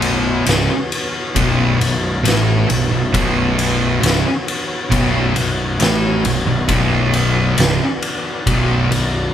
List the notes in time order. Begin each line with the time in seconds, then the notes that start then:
Already playing: B0 B1 B2 B3 F#4 C#5
0.02 ride
0.46 C#1 C#2 C#3, snare, ride
0.92 ride
1.35 B0 B1 B2, kick, ride
1.79 B0 B1, ride
2.23 A1 A2 A3, ride
2.28 snare
2.68 B0 B1, ride
2.90 B0 B1
3.14 B0 B1 B2, kick, ride
3.59 ride
4.01 C#1 C#2 C#3, ride
4.06 snare
4.48 ride
4.91 B0 B1 B2, kick, ride
5.36 B0 B1, ride
5.79 A1 A2 A3, snare, ride
6.24 B0 B1, ride
6.46 B0 B1
6.68 B0 B1 B2 D5, kick, ride
7.14 ride
7.57 C#1 C#2 C#3, snare, ride
8.02 ride
8.47 B0 B1 B2, kick, ride
8.90 B0 B1, ride